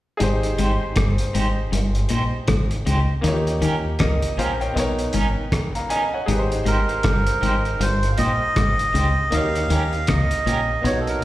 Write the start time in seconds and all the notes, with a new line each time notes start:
0.17 G#1 G#2 D#4 G4 G#4, closed hi-hat
0.23 C5
0.43 closed hi-hat
0.58 G#1 G#2 D#4 G4 C5, closed hi-hat
0.96 G1 G2, kick, cross-stick, closed hi-hat
1.18 closed hi-hat
1.34 G#1 G#2 D#4 G4 C5, closed hi-hat
1.72 G1 G2, closed hi-hat
1.95 closed hi-hat
2.09 A#1 A#2 D#4 G4 C5, closed hi-hat
2.48 G#1 G#2, kick, cross-stick, closed hi-hat
2.71 closed hi-hat
2.86 C#2 C#3 D#4 G4 C5, closed hi-hat
3.21 D#2 D#3 A#3 D#4, closed hi-hat
3.25 F4 C#5
3.32 G4
3.47 closed hi-hat
3.62 D#2 D#3 C#4 G4 A#4, closed hi-hat
3.99 C#2 C#3 A#4 D#5, kick, cross-stick, closed hi-hat
4.22 closed hi-hat
4.38 A#1 A#2 C#4 G4 A#4 C5 F5, closed hi-hat
4.61 C#5 G5, closed hi-hat
4.73 B1 B2 B3 D#4, closed hi-hat
4.78 A#4 C#5
4.99 closed hi-hat
5.13 G#1 G#2 C#4 D#4 A#4, closed hi-hat
5.52 kick, cross-stick, closed hi-hat
5.75 F5 A#5, closed hi-hat
5.90 C#4 D#4 A#4 D#5 G#5, closed hi-hat
6.13 C#5 F#5
6.26 G#1 G#2 D#4 G#4, closed hi-hat
6.30 G4 B4
6.39 C5
6.52 closed hi-hat
6.65 G#1 G#2 D#4 G4 A#4 C5, closed hi-hat
6.89 closed hi-hat
7.03 G1 G2, kick, cross-stick, closed hi-hat
7.27 closed hi-hat
7.41 G#1 G#2 D#4 G4 C5, closed hi-hat
7.65 closed hi-hat
7.80 G1 G2 C5, closed hi-hat
8.03 closed hi-hat
8.12 F5
8.18 A#1 A#2 D#4 G4 C5 D#5, closed hi-hat
8.56 G#1 G#2, kick, cross-stick, closed hi-hat
8.79 closed hi-hat
8.94 C#2 C#3 D#4 G4 C5, closed hi-hat
9.30 D#2 D#3 A#3 D#4 F5, closed hi-hat
9.34 F#4 C#5
9.40 G4
9.55 closed hi-hat
9.70 D#2 D#3 C#4 G4 A#4, closed hi-hat
9.93 closed hi-hat
10.07 C#2 C#3 D#5, kick, cross-stick, closed hi-hat
10.31 closed hi-hat
10.46 A#1 A#2 C#4 G4 A#4, closed hi-hat
10.82 B1 B2 B3 D#4 C#5, closed hi-hat
10.86 F#4 C#5
11.00 A4
11.07 A#4, closed hi-hat